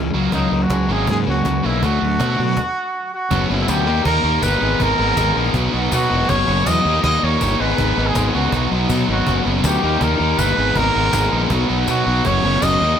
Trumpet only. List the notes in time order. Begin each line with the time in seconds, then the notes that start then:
0.33 D#4
0.63 F#4
0.92 G#4
1.10 G#4
1.29 F#4
1.65 E4
1.84 F#4
3.14 F#4
3.61 E4
3.69 G4
4.06 A#4
4.43 B4
4.82 A#4
5.93 F#4
6.29 C#5
6.67 D#5
7.04 D#5
7.24 C#5
7.60 B4
8.06 G#4
8.33 F#4
9.12 F#4
9.66 G4
10.02 A#4
10.39 B4
10.77 A#4
11.90 F#4
12.26 C#5
12.63 D#5